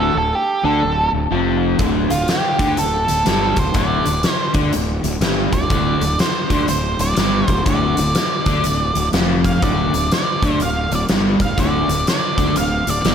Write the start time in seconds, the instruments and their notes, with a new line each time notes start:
Already playing: fingered electric bass D1, overdriven electric guitar D2 D3, lead electric guitar A4
0.15 fingered electric bass D1, overdriven electric guitar D2, lead electric guitar A4
0.35 lead electric guitar G4
0.63 fingered electric bass D2, overdriven electric guitar D3 D4, lead electric guitar A4
0.82 fingered electric bass D1, overdriven electric guitar D2
1.13 fingered electric bass D1, overdriven electric guitar D2
1.31 fingered electric bass F1, overdriven electric guitar F2 F3
1.79 fingered electric bass D1, overdriven electric guitar D2 D3, kick, closed hi-hat
2.10 fingered electric bass D1, overdriven electric guitar D2, lead electric guitar F4, closed hi-hat
2.28 lead electric guitar G4, snare, closed hi-hat
2.59 fingered electric bass D2, overdriven electric guitar D3 D4, kick, closed hi-hat
2.77 fingered electric bass D1, overdriven electric guitar D2, lead electric guitar A4, closed hi-hat
3.08 fingered electric bass D1, overdriven electric guitar D2, closed hi-hat
3.25 fingered electric bass G1, overdriven electric guitar G2 G3, snare, closed hi-hat
3.56 fingered electric bass D1, overdriven electric guitar D2, lead electric guitar C5, kick, closed hi-hat
3.74 fingered electric bass D1, overdriven electric guitar D2 D3, lead electric guitar D5, kick, closed hi-hat
4.05 fingered electric bass D1, overdriven electric guitar D2, closed hi-hat
4.23 snare, closed hi-hat
4.32 lead electric guitar C5
4.54 fingered electric bass D2, overdriven electric guitar D3 D4, kick, closed hi-hat
4.72 fingered electric bass D1, overdriven electric guitar D2, closed hi-hat
5.03 fingered electric bass D1, overdriven electric guitar D2, closed hi-hat
5.20 fingered electric bass G1, overdriven electric guitar G2 G3, snare, closed hi-hat
5.53 fingered electric bass D1, overdriven electric guitar D2, lead electric guitar D5, kick, closed hi-hat
5.70 fingered electric bass D1, overdriven electric guitar D2 D3, kick, closed hi-hat
6.00 fingered electric bass D1, overdriven electric guitar D2, closed hi-hat
6.19 lead electric guitar C5, snare, closed hi-hat
6.50 fingered electric bass D2, overdriven electric guitar D3 D4, kick, closed hi-hat
6.68 fingered electric bass D1, overdriven electric guitar D2, lead electric guitar C5, closed hi-hat
6.99 fingered electric bass D1, overdriven electric guitar D2, lead electric guitar D5, closed hi-hat
7.17 fingered electric bass G1, overdriven electric guitar G2 G3, snare, closed hi-hat
7.47 fingered electric bass D1, overdriven electric guitar D2, lead electric guitar C5, kick, closed hi-hat
7.66 fingered electric bass D1, overdriven electric guitar D2 D3, lead electric guitar D5, kick, closed hi-hat
7.97 fingered electric bass D1, overdriven electric guitar D2, closed hi-hat
8.15 snare, closed hi-hat
8.46 fingered electric bass D2, overdriven electric guitar D3 D4, kick, closed hi-hat
8.64 fingered electric bass D1, overdriven electric guitar D2, closed hi-hat
8.95 fingered electric bass D1, overdriven electric guitar D2, closed hi-hat
9.13 fingered electric bass F1, overdriven electric guitar F2 F3, snare, closed hi-hat
9.44 lead electric guitar F5, kick, closed hi-hat
9.62 fingered electric bass D1, overdriven electric guitar D2 D3, lead electric guitar D5, kick, closed hi-hat
9.94 fingered electric bass D1, overdriven electric guitar D2, closed hi-hat
10.12 lead electric guitar D5, snare, closed hi-hat
10.43 fingered electric bass D2, overdriven electric guitar D3 D4, kick, closed hi-hat
10.60 fingered electric bass D1, overdriven electric guitar D2, lead electric guitar F5, closed hi-hat
10.91 fingered electric bass D1, overdriven electric guitar D2, closed hi-hat
10.95 lead electric guitar D5
11.09 fingered electric bass G1, overdriven electric guitar G2 G3, snare, closed hi-hat
11.40 fingered electric bass D1, overdriven electric guitar D2, lead electric guitar F5, kick, closed hi-hat
11.58 fingered electric bass D1, overdriven electric guitar D2 D3, lead electric guitar D5, kick, closed hi-hat
11.88 fingered electric bass D1, overdriven electric guitar D2, closed hi-hat
12.07 lead electric guitar D5, snare, closed hi-hat
12.38 fingered electric bass D2, overdriven electric guitar D3 D4, kick, closed hi-hat
12.54 fingered electric bass D1, overdriven electric guitar D2, lead electric guitar F5, closed hi-hat
12.87 fingered electric bass D1, overdriven electric guitar D2, lead electric guitar D5, closed hi-hat
13.05 fingered electric bass G1, overdriven electric guitar G2 G3, snare, closed hi-hat